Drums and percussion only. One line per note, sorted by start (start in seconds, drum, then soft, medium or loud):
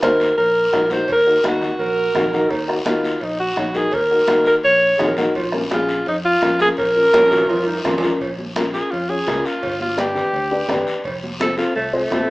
0.02 bombo rim medium
0.02 cowbell medium
0.02 high conga loud
0.02 short guiro medium
0.20 short guiro medium
0.38 cowbell medium
0.38 high conga soft
0.38 long guiro medium
0.73 bombo low medium
0.73 bombo rim medium
0.73 cowbell medium
0.73 high conga medium
0.73 low timbale medium
0.73 short guiro medium
0.90 high conga medium
0.90 short guiro medium
1.08 bombo low medium
1.08 cowbell loud
1.08 high conga soft
1.08 long guiro medium
1.44 bombo rim medium
1.44 cowbell medium
1.44 high conga medium
1.44 short guiro medium
1.61 low conga medium
1.61 short guiro medium
1.79 cowbell medium
1.79 high conga soft
1.79 long guiro medium
2.15 bombo low medium
2.15 bombo rim medium
2.15 cowbell medium
2.15 high conga medium
2.15 low conga medium
2.15 short guiro medium
2.33 short guiro medium
2.50 bombo low medium
2.50 cowbell loud
2.50 high conga soft
2.50 long guiro medium
2.69 bombo rim medium
2.86 bombo rim medium
2.86 cowbell medium
2.86 high conga loud
2.86 short guiro medium
3.04 short guiro medium
3.21 cowbell medium
3.21 high conga soft
3.21 long guiro medium
3.56 bombo low medium
3.56 bombo rim medium
3.56 cowbell medium
3.56 high conga medium
3.56 short guiro medium
3.74 high conga medium
3.74 short guiro medium
3.91 bombo low medium
3.91 cowbell loud
3.91 high conga soft
3.91 long guiro medium
4.28 bombo rim medium
4.28 cowbell medium
4.28 high conga loud
4.28 short guiro medium
4.45 short guiro medium
4.63 cowbell medium
4.63 high conga soft
4.63 long guiro medium
4.99 bombo low medium
4.99 bombo rim medium
4.99 cowbell medium
4.99 high conga medium
4.99 low conga medium
4.99 short guiro medium
5.17 high conga medium
5.17 short guiro medium
5.35 bombo low medium
5.35 cowbell loud
5.35 high conga soft
5.35 long guiro medium
5.52 bombo rim medium
5.52 high conga medium
5.70 bombo rim medium
5.70 cowbell medium
5.70 high conga loud
5.70 short guiro medium
5.88 short guiro medium
6.06 cowbell medium
6.06 high conga soft
6.06 long guiro medium
6.42 bombo low medium
6.42 bombo rim medium
6.42 cowbell medium
6.42 high conga medium
6.42 short guiro medium
6.59 high conga medium
6.59 short guiro medium
6.77 bombo low medium
6.77 cowbell loud
6.77 high conga soft
6.77 long guiro medium
7.13 bombo rim medium
7.13 cowbell medium
7.13 high conga loud
7.13 high timbale medium
7.13 short guiro medium
7.26 high timbale medium
7.31 low conga medium
7.31 short guiro medium
7.38 low timbale medium
7.49 cowbell medium
7.49 high conga soft
7.49 low timbale medium
7.49 long guiro medium
7.63 low timbale medium
7.74 low timbale medium
7.85 bombo low medium
7.85 bombo rim medium
7.85 cowbell medium
7.85 high conga medium
7.85 low conga medium
7.85 low timbale medium
7.85 short guiro medium
7.98 low timbale loud
8.03 short guiro medium
8.10 low timbale medium
8.21 bombo low medium
8.21 cowbell loud
8.21 high conga soft
8.21 long guiro medium
8.38 high conga medium
8.56 bombo rim medium
8.56 cowbell medium
8.56 high conga loud
8.56 short guiro medium
8.74 short guiro medium
8.92 cowbell medium
8.92 high conga soft
8.92 long guiro medium
9.27 bombo low medium
9.27 bombo rim medium
9.27 cowbell medium
9.27 high conga medium
9.27 low timbale medium
9.27 short guiro medium
9.45 short guiro medium
9.63 bombo low medium
9.63 cowbell loud
9.63 high conga soft
9.63 long guiro medium
9.80 high conga medium
9.98 bombo rim medium
9.98 cowbell medium
9.98 high conga medium
9.98 short guiro medium
10.16 low conga medium
10.16 short guiro medium
10.33 cowbell medium
10.33 high conga soft
10.33 long guiro medium
10.68 bombo low medium
10.68 bombo rim medium
10.68 cowbell medium
10.68 high conga medium
10.68 low conga medium
10.68 short guiro medium
10.87 short guiro medium
11.04 bombo low medium
11.04 cowbell loud
11.04 high conga soft
11.04 long guiro medium
11.23 high conga medium
11.40 bombo rim medium
11.40 cowbell medium
11.40 high conga medium
11.40 short guiro medium
11.58 short guiro medium
11.75 cowbell medium
11.75 high conga soft
11.75 long guiro medium
12.11 bombo low medium
12.11 bombo rim medium
12.11 cowbell medium
12.11 high conga medium
12.11 low timbale medium
12.11 short guiro medium